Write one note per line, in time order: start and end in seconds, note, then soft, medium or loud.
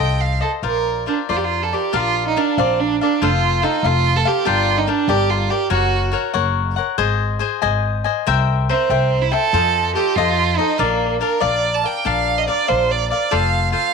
0.00 0.40 C2 medium
0.00 0.44 F4 soft
0.00 0.41 A4 medium
0.00 0.41 C5 soft
0.00 0.39 D#5 medium
0.00 0.22 G5 medium
0.21 0.41 F5 medium
0.41 0.51 A4 medium
0.41 0.63 A4 soft
0.41 0.62 C5 soft
0.41 0.63 D#5 soft
0.63 1.05 A#1 medium
0.63 1.06 F4 medium
0.63 1.07 A#4 medium
0.63 1.04 A#4 medium
0.63 1.07 C5 medium
0.63 1.07 D5 medium
1.06 1.17 D4 medium
1.06 1.29 F4 soft
1.06 1.29 A#4 soft
1.06 1.28 C5 soft
1.06 1.28 D5 soft
1.29 1.72 F2 medium
1.29 1.38 F4 medium
1.29 1.92 F4 soft
1.29 1.73 A#4 medium
1.29 1.73 C5 medium
1.29 1.71 D5 medium
1.36 1.46 G4 medium
1.44 1.64 F4 medium
1.63 1.75 A4 medium
1.73 1.97 G4 medium
1.73 1.92 A#4 soft
1.73 1.93 C5 soft
1.73 1.93 D5 soft
1.93 2.35 A#1 medium
1.93 2.35 D4 medium
1.93 2.27 F4 medium
1.93 2.36 A#4 medium
1.93 2.36 D5 medium
1.93 2.37 F5 medium
2.28 2.39 D#4 medium
2.36 2.58 D4 soft
2.36 2.60 D4 medium
2.36 2.58 A#4 medium
2.36 2.58 D5 medium
2.36 2.57 F5 medium
2.58 2.99 A#1 medium
2.58 2.81 C4 medium
2.58 3.01 D4 soft
2.58 3.00 A#4 medium
2.58 3.01 D5 medium
2.58 3.00 F5 medium
2.80 3.00 D4 medium
3.01 3.24 D4 medium
3.01 3.22 A#4 soft
3.01 3.22 D5 soft
3.01 3.21 F5 soft
3.22 3.62 F1 medium
3.22 3.61 F4 medium
3.22 3.65 F4 medium
3.22 3.62 A4 medium
3.22 3.62 C5 medium
3.22 3.63 F5 medium
3.62 3.87 D#4 medium
3.62 3.83 F4 medium
3.62 3.83 A4 medium
3.62 3.84 C5 soft
3.62 3.83 F5 medium
3.83 4.23 F1 medium
3.83 4.18 F4 loud
3.83 4.26 F4 medium
3.83 4.26 A4 medium
3.83 4.25 C5 medium
3.83 4.24 F5 medium
4.16 4.29 A4 medium
4.25 4.49 G4 medium
4.25 4.45 A4 soft
4.25 4.46 C5 soft
4.25 4.46 F5 medium
4.45 4.87 G1 medium
4.45 4.86 D4 medium
4.45 4.79 F4 medium
4.45 4.87 A#4 medium
4.45 4.87 D5 medium
4.45 4.87 G5 medium
4.78 4.90 D#4 medium
4.87 5.08 D4 medium
4.87 5.10 D4 medium
4.87 5.08 A#4 medium
4.87 5.08 D5 medium
4.87 5.07 G5 medium
5.08 5.49 G1 medium
5.08 5.51 D4 medium
5.08 5.31 G4 medium
5.08 5.51 A#4 medium
5.08 5.50 D5 medium
5.08 5.49 G5 medium
5.29 5.52 F4 medium
5.50 5.71 G4 medium
5.50 5.69 A#4 soft
5.50 5.70 D5 soft
5.50 5.70 G5 soft
5.70 6.13 F#1 medium
5.70 6.10 F#4 medium
5.70 6.16 F#4 medium
5.70 6.11 A#4 medium
5.70 6.12 C#5 medium
5.70 6.13 F#5 medium
6.12 6.33 F#4 soft
6.12 6.33 A#4 medium
6.12 6.32 C#5 medium
6.12 6.32 F#5 medium
6.34 6.76 F#1 medium
6.34 6.77 F#4 medium
6.34 6.77 A#4 medium
6.34 6.76 C#5 medium
6.34 6.75 F#5 medium
6.76 6.97 A#4 soft
6.76 6.98 C#5 soft
6.76 6.98 F#5 soft
6.98 7.40 G#1 medium
6.98 7.38 G#4 medium
6.98 7.40 C5 medium
6.98 7.39 D#5 medium
6.98 7.40 G#5 medium
7.39 7.61 G#4 medium
7.39 7.61 C5 medium
7.39 7.61 D#5 medium
7.39 7.60 G#5 medium
7.62 8.05 G#1 medium
7.62 8.06 G#4 medium
7.62 8.05 C5 medium
7.62 8.04 D#5 medium
7.62 8.03 G#5 medium
8.04 8.26 C5 soft
8.04 8.26 D#5 medium
8.04 8.26 G#5 medium
8.27 8.68 C2 medium
8.27 8.68 A#4 medium
8.27 8.69 C5 medium
8.27 8.69 E5 medium
8.27 8.70 G5 medium
8.69 9.23 C4 medium
8.69 8.90 A#4 medium
8.69 8.90 C5 medium
8.69 8.89 E5 medium
8.69 8.89 G5 medium
8.90 9.31 C2 medium
8.90 9.33 A#4 medium
8.90 9.32 C5 medium
8.90 9.32 E5 medium
8.90 9.30 G5 medium
9.22 9.33 E4 medium
9.32 9.94 A4 loud
9.32 9.53 C5 soft
9.32 9.53 E5 soft
9.32 9.53 G5 soft
9.53 9.94 F2 loud
9.53 9.95 F4 medium
9.53 9.94 A4 medium
9.53 9.95 C5 medium
9.53 9.96 D#5 medium
9.95 10.16 F4 medium
9.95 10.17 G4 medium
9.95 10.16 A4 soft
9.95 10.16 C5 medium
9.95 10.17 D#5 medium
10.16 10.56 F2 medium
10.16 10.59 F4 loud
10.16 10.61 F4 soft
10.16 10.58 A4 medium
10.16 10.58 C5 medium
10.16 10.57 D#5 medium
10.57 10.81 D#4 medium
10.57 10.79 A4 soft
10.57 10.79 C5 medium
10.57 10.79 D#5 medium
10.78 11.20 A#1 medium
10.78 11.20 A#3 medium
10.78 11.20 D4 medium
10.78 11.21 A#4 medium
10.78 11.21 D5 medium
10.78 11.22 F5 medium
11.21 11.40 D4 medium
11.21 11.42 A#4 medium
11.21 11.40 A#4 medium
11.21 11.39 D5 medium
11.21 11.40 F5 medium
11.40 11.83 A#1 medium
11.40 11.84 D4 medium
11.40 11.83 A#4 medium
11.40 11.82 D5 medium
11.40 11.76 D5 medium
11.40 11.84 F5 medium
11.74 11.87 A5 medium
11.83 12.04 A#4 soft
11.83 12.05 D5 soft
11.83 12.05 F5 soft
11.83 12.08 G5 medium
12.05 12.47 A#1 medium
12.05 12.46 D4 medium
12.05 12.47 A#4 medium
12.05 12.48 D5 medium
12.05 12.48 F5 medium
12.05 12.39 F5 medium
12.38 12.47 D#5 medium
12.47 12.67 D4 soft
12.47 12.67 A#4 soft
12.47 12.70 D5 medium
12.47 12.66 D5 medium
12.47 12.67 F5 medium
12.67 13.10 A#1 medium
12.67 13.11 D4 medium
12.67 13.11 A#4 soft
12.67 12.92 C5 medium
12.67 13.09 D5 medium
12.67 13.10 F5 medium
12.91 13.10 D5 medium
13.10 13.31 A#4 soft
13.10 13.33 D5 medium
13.10 13.31 D5 soft
13.10 13.31 F5 soft
13.31 13.73 F1 medium
13.31 13.71 F4 medium
13.31 13.72 A4 medium
13.31 13.72 C5 medium
13.31 13.72 F5 medium
13.72 13.93 F4 medium
13.72 13.94 A4 soft
13.72 13.93 C5 soft
13.72 13.94 F5 medium
13.72 13.93 F5 medium